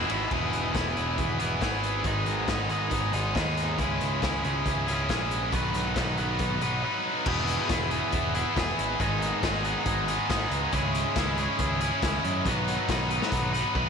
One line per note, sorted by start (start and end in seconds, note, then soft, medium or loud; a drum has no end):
0.00 0.10 E4 loud
0.10 0.26 G#1 medium
0.10 0.30 E2 medium
0.10 0.30 B2 medium
0.10 0.30 E3 medium
0.10 0.31 G#3 medium
0.10 0.31 B3 medium
0.10 0.31 E4 medium
0.10 ride medium
0.31 0.52 E1 medium
0.31 0.73 E2 medium
0.31 0.74 B2 medium
0.31 0.74 E3 medium
0.31 0.75 B3 medium
0.31 0.75 E4 medium
0.31 0.76 G#4 medium
0.31 kick medium
0.31 crash medium
0.53 0.74 E1 medium
0.53 closed hi-hat medium
0.74 0.95 E1 medium
0.74 1.18 E2 medium
0.74 1.18 B2 medium
0.74 0.98 E3 medium
0.74 0.98 B3 medium
0.74 0.96 E4 medium
0.74 0.96 G#4 medium
0.74 kick medium
0.74 snare medium
0.74 closed hi-hat medium
0.97 1.18 E1 medium
0.97 1.41 E3 medium
0.97 1.41 B3 medium
0.97 1.40 E4 medium
0.97 1.39 G#4 medium
0.97 closed hi-hat medium
1.18 1.39 E1 medium
1.18 kick loud
1.18 closed hi-hat medium
1.40 1.61 E1 medium
1.40 1.60 E3 medium
1.40 1.62 B3 medium
1.40 1.61 E4 medium
1.40 1.63 G#4 medium
1.40 closed hi-hat medium
1.61 2.04 G#1 medium
1.61 2.04 E3 medium
1.61 2.06 B3 medium
1.61 2.04 E4 medium
1.61 2.07 G#4 medium
1.61 kick medium
1.61 snare medium
1.61 closed hi-hat medium
1.83 closed hi-hat soft
2.04 2.26 G#1 medium
2.04 2.47 G#2 medium
2.04 2.48 D#3 medium
2.04 2.49 G#3 medium
2.04 2.50 B3 medium
2.04 2.50 D#4 medium
2.04 2.50 G#4 medium
2.04 kick medium
2.04 closed hi-hat medium
2.26 2.47 G#1 medium
2.26 closed hi-hat medium
2.48 2.69 G#1 medium
2.48 2.92 G#2 medium
2.48 2.92 D#3 medium
2.48 2.72 G#3 medium
2.48 2.71 B3 medium
2.48 2.70 D#4 medium
2.48 2.70 G#4 medium
2.48 kick medium
2.48 snare loud
2.48 closed hi-hat medium
2.69 2.91 G#1 medium
2.69 3.15 G#3 medium
2.69 3.15 B3 medium
2.69 3.13 D#4 medium
2.69 3.12 G#4 medium
2.69 closed hi-hat medium
2.91 3.12 G#1 medium
2.91 kick medium
2.91 closed hi-hat medium
3.13 3.34 G#1 medium
3.13 3.33 G#3 medium
3.13 3.35 B3 soft
3.13 3.35 D#4 medium
3.13 3.36 G#4 medium
3.13 closed hi-hat medium
3.34 3.78 D#2 medium
3.34 3.77 G#3 medium
3.34 3.79 B3 medium
3.34 3.78 D#4 medium
3.34 3.79 G#4 medium
3.34 kick medium
3.34 snare medium
3.34 closed hi-hat medium
3.57 snare soft
3.57 closed hi-hat medium
3.78 4.00 C#2 medium
3.78 4.21 C#3 medium
3.78 4.22 G#3 medium
3.78 4.22 C#4 medium
3.78 4.22 E4 medium
3.78 4.23 G#4 medium
3.78 kick medium
3.78 closed hi-hat medium
4.01 4.22 C#2 medium
4.01 closed hi-hat medium
4.22 4.44 C#2 medium
4.22 4.66 C#3 medium
4.22 4.66 G#3 medium
4.22 4.45 C#4 medium
4.22 4.44 E4 medium
4.22 4.43 G#4 medium
4.22 kick medium
4.22 snare loud
4.22 closed hi-hat medium
4.44 4.65 C#2 medium
4.44 4.89 C#4 soft
4.44 4.88 E4 medium
4.44 4.86 G#4 medium
4.44 closed hi-hat medium
4.66 4.87 C#2 medium
4.66 kick medium
4.66 closed hi-hat medium
4.88 5.09 C#2 medium
4.88 5.09 C#4 medium
4.88 5.10 E4 medium
4.88 5.10 G#4 medium
4.88 closed hi-hat medium
5.09 5.52 A#1 medium
5.09 5.52 G#3 medium
5.09 5.52 C#4 medium
5.09 5.53 E4 medium
5.09 5.53 G#4 medium
5.09 kick medium
5.09 snare loud
5.09 closed hi-hat medium
5.31 closed hi-hat medium
5.52 5.74 B1 medium
5.52 5.95 B2 medium
5.52 5.96 D#3 medium
5.52 5.96 F#3 medium
5.52 5.97 B3 medium
5.52 5.97 D#4 medium
5.52 5.98 B4 medium
5.52 kick medium
5.52 closed hi-hat medium
5.74 5.95 B1 medium
5.74 closed hi-hat medium
5.96 6.17 B1 medium
5.96 6.40 B2 medium
5.96 6.40 D#3 medium
5.96 6.19 F#3 medium
5.96 6.19 B3 medium
5.96 6.18 D#4 medium
5.96 6.17 B4 medium
5.96 kick medium
5.96 snare medium
5.96 closed hi-hat medium
6.18 6.39 B1 medium
6.18 6.64 F#3 medium
6.18 6.63 B3 medium
6.18 6.62 D#4 medium
6.18 6.61 B4 medium
6.18 closed hi-hat soft
6.39 6.61 B1 medium
6.39 kick loud
6.39 closed hi-hat medium
6.61 6.83 B1 medium
6.61 6.82 F#3 medium
6.61 6.83 B3 medium
6.61 6.84 D#4 medium
6.61 6.84 B4 medium
6.61 closed hi-hat medium
6.83 7.26 F#3 medium
6.83 7.26 B3 medium
6.83 7.26 D#4 medium
6.83 7.27 B4 medium
7.26 7.57 E1 medium
7.26 7.69 E2 medium
7.26 7.69 B2 medium
7.26 7.70 E3 medium
7.26 7.71 B3 medium
7.26 7.70 E4 medium
7.26 7.71 G#4 loud
7.26 kick medium
7.26 crash medium
7.47 closed hi-hat medium
7.69 8.01 E1 medium
7.69 8.13 E2 medium
7.69 8.14 B2 medium
7.69 7.93 E3 medium
7.69 7.93 B3 loud
7.69 7.91 E4 medium
7.69 7.91 G#4 medium
7.69 kick loud
7.69 snare loud
7.69 closed hi-hat medium
7.91 8.37 E3 medium
7.91 8.36 B3 medium
7.91 8.35 E4 medium
7.91 8.35 G#4 medium
7.91 closed hi-hat medium
8.12 8.44 E1 medium
8.12 kick loud
8.12 closed hi-hat medium
8.35 8.55 E3 medium
8.35 8.57 B3 medium
8.35 8.57 E4 medium
8.35 8.59 G#4 medium
8.35 closed hi-hat medium
8.56 8.72 E1 medium
8.56 8.99 E3 medium
8.56 9.01 B3 medium
8.56 9.00 E4 medium
8.56 9.02 G#4 medium
8.56 kick loud
8.56 snare loud
8.56 closed hi-hat medium
8.79 8.94 G#1 medium
8.79 closed hi-hat medium
9.00 9.31 G#1 medium
9.00 9.42 G#2 medium
9.00 9.42 D#3 medium
9.00 9.43 G#3 medium
9.00 9.44 B3 medium
9.00 9.44 D#4 medium
9.00 9.45 G#4 medium
9.00 kick loud
9.00 closed hi-hat medium
9.22 closed hi-hat medium
9.43 9.74 G#1 medium
9.43 9.87 G#2 medium
9.43 9.87 D#3 medium
9.43 9.66 G#3 medium
9.43 9.65 B3 medium
9.43 9.63 D#4 medium
9.43 9.63 G#4 medium
9.43 kick loud
9.43 snare loud
9.43 closed hi-hat medium
9.64 10.09 G#3 medium
9.64 10.09 B3 medium
9.64 10.07 D#4 medium
9.64 10.06 G#4 medium
9.64 closed hi-hat medium
9.86 10.17 G#1 medium
9.86 kick loud
9.86 closed hi-hat medium
10.07 10.28 G#3 medium
10.07 10.29 B3 medium
10.07 10.29 D#4 medium
10.07 10.30 G#4 medium
10.07 closed hi-hat medium
10.29 10.45 G#1 medium
10.29 10.71 G#3 medium
10.29 10.73 B3 medium
10.29 10.72 D#4 medium
10.29 10.73 G#4 medium
10.29 kick loud
10.29 snare loud
10.29 closed hi-hat medium
10.51 10.66 C#2 medium
10.51 closed hi-hat medium
10.72 11.04 C#2 medium
10.72 11.16 C#3 medium
10.72 11.16 G#3 medium
10.72 11.17 C#4 medium
10.72 11.17 E4 medium
10.72 11.18 G#4 medium
10.72 kick loud
10.72 closed hi-hat medium
10.95 closed hi-hat medium
11.16 11.47 C#2 medium
11.16 11.60 C#3 medium
11.16 11.60 G#3 medium
11.16 11.40 C#4 loud
11.16 11.39 E4 loud
11.16 11.38 G#4 loud
11.16 kick loud
11.16 snare loud
11.16 closed hi-hat medium
11.38 11.82 C#4 medium
11.38 11.81 E4 medium
11.38 11.80 G#4 medium
11.38 closed hi-hat medium
11.59 11.90 C#2 medium
11.59 kick loud
11.59 closed hi-hat medium
11.81 12.03 C#4 medium
11.81 12.04 E4 medium
11.81 12.04 G#4 medium
11.81 closed hi-hat medium
12.02 12.18 C#2 medium
12.02 12.45 G#3 medium
12.02 12.45 C#4 medium
12.02 12.46 E4 medium
12.02 12.46 G#4 medium
12.02 kick loud
12.02 snare loud
12.02 closed hi-hat medium
12.24 12.47 F#2 medium
12.24 closed hi-hat medium
12.45 12.76 B1 medium
12.45 12.88 B2 medium
12.45 12.89 D#3 medium
12.45 12.89 F#3 medium
12.45 12.90 B3 medium
12.45 12.91 D#4 loud
12.45 12.91 B4 loud
12.45 kick loud
12.45 closed hi-hat medium
12.68 closed hi-hat medium
12.89 13.20 B1 medium
12.89 13.33 B2 medium
12.89 13.33 D#3 medium
12.89 13.12 F#3 medium
12.89 13.12 B3 medium
12.89 13.11 D#4 medium
12.89 13.10 B4 medium
12.89 kick loud
12.89 snare loud
12.89 closed hi-hat medium
13.10 13.55 F#3 medium
13.10 13.55 B3 medium
13.10 13.54 D#4 medium
13.10 13.53 B4 medium
13.10 closed hi-hat medium
13.22 snare medium
13.32 13.63 B1 medium
13.32 kick loud
13.32 closed hi-hat medium
13.53 13.73 F#3 medium
13.53 13.75 B3 medium
13.53 13.76 D#4 medium
13.53 13.76 B4 medium
13.53 closed hi-hat medium
13.74 13.89 B1 medium
13.74 13.89 F#3 medium
13.74 13.89 B3 medium
13.74 13.89 D#4 medium
13.74 13.89 B4 medium
13.74 kick medium